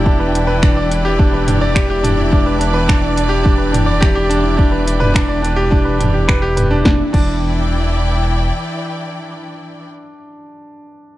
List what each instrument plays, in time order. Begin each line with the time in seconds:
Already playing: detuned saw bass E1, string section E3 E4 D5 G5, grand piano D4 E4 G4 B4 D5
0.06 grand piano D4, kick
0.19 grand piano B4
0.34 grand piano D4, closed hi-hat
0.47 grand piano B4
0.62 grand piano D4, finger snap, kick
0.77 grand piano D5
0.90 grand piano D4, closed hi-hat
1.05 grand piano G4
1.19 grand piano D4, kick
1.33 grand piano B4
1.48 grand piano D4, closed hi-hat, mid tom
1.61 grand piano D5
1.75 grand piano G4, finger snap, kick
1.90 grand piano G4
2.03 grand piano D4, closed hi-hat, mid tom
2.18 grand piano E4
2.31 grand piano D4, kick
2.46 grand piano B4
2.59 grand piano D4, closed hi-hat
2.74 grand piano B4
2.88 grand piano D4, finger snap, kick
3.01 grand piano D5
3.16 grand piano D4, closed hi-hat
3.29 grand piano G4
3.43 grand piano D4, kick
3.58 grand piano B4
3.72 grand piano D4, closed hi-hat, mid tom
3.86 grand piano D5
4.01 grand piano G4, finger snap, kick
4.15 grand piano G4
4.29 grand piano D4, closed hi-hat
4.43 grand piano E4
4.57 grand piano D4, kick
4.72 grand piano B4
4.86 grand piano D4, closed hi-hat
5.00 grand piano B4, mid tom
5.14 grand piano D4, finger snap, kick
5.29 grand piano D5
5.42 grand piano D4, closed hi-hat
5.56 grand piano G4
5.71 grand piano D4, kick
5.85 grand piano B4
5.99 grand piano D4, closed hi-hat, mid tom
6.14 grand piano G4
6.28 grand piano B4, finger snap, kick
6.42 grand piano G4
6.56 grand piano B4, closed hi-hat, mid tom
6.71 grand piano D4
6.85 detuned saw bass E1, string section E3, grand piano D4, kick, snare
6.95 string section E4
7.02 string section D5
7.10 grand piano D4, string section G5
7.14 detuned saw bass E1, kick, crash